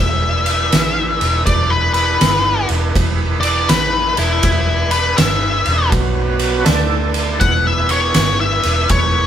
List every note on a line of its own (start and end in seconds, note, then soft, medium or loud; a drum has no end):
0.00 0.69 E1 medium
0.00 1.43 E4 medium
0.00 1.43 G#4 medium
0.00 1.43 B4 medium
0.00 1.42 E5 loud
0.46 ride medium
0.72 1.17 A1 medium
0.72 snare loud
0.72 ride medium
1.21 1.46 E1 medium
1.21 ride medium
1.46 2.17 E1 medium
1.46 4.42 E4 medium
1.46 4.41 G#4 medium
1.46 4.41 B4 medium
1.46 1.70 D5 medium
1.46 kick medium
1.46 ride medium
1.70 1.92 B4 medium
1.94 2.67 B4 loud
1.94 ride medium
2.21 2.66 G1 medium
2.21 snare loud
2.21 ride medium
2.69 2.94 E1 medium
2.69 ride medium
2.96 3.66 E1 medium
2.96 kick loud
2.96 ride medium
3.41 3.68 D5 medium
3.41 ride medium
3.69 4.14 A1 medium
3.69 4.16 B4 medium
3.69 snare loud
3.69 ride loud
4.17 4.43 E1 medium
4.17 4.90 E4 medium
4.17 ride medium
4.43 5.14 E1 medium
4.43 5.91 G#4 medium
4.43 5.89 B4 medium
4.43 5.91 E5 medium
4.43 kick medium
4.43 ride medium
4.91 5.17 B4 medium
4.91 ride medium
5.17 5.63 G1 medium
5.17 5.90 E5 medium
5.17 snare loud
5.17 ride loud
5.66 5.91 E1 medium
5.66 ride medium
5.89 6.63 B1 medium
5.89 6.65 F#3 medium
5.89 6.65 B3 medium
5.89 6.65 F#4 medium
5.89 6.65 B4 medium
5.89 kick medium
5.89 ride medium
6.39 ride medium
6.64 7.38 D2 medium
6.64 7.40 A3 medium
6.64 7.39 D4 medium
6.64 7.40 A4 medium
6.64 7.39 D5 medium
6.64 snare loud
6.64 ride medium
7.14 ride medium
7.38 8.12 E1 medium
7.38 9.27 B3 medium
7.38 9.27 E4 medium
7.38 9.27 G#4 medium
7.38 9.27 B4 medium
7.38 7.65 F#5 medium
7.38 kick medium
7.38 ride medium
7.67 7.91 E5 loud
7.89 8.39 C#5 medium
7.89 ride medium
8.14 8.60 G1 medium
8.14 snare loud
8.14 ride medium
8.41 8.89 E5 medium
8.63 8.89 E1 medium
8.63 ride medium
8.89 9.27 E1 medium
8.89 9.27 C#5 medium
8.89 kick medium
8.89 ride medium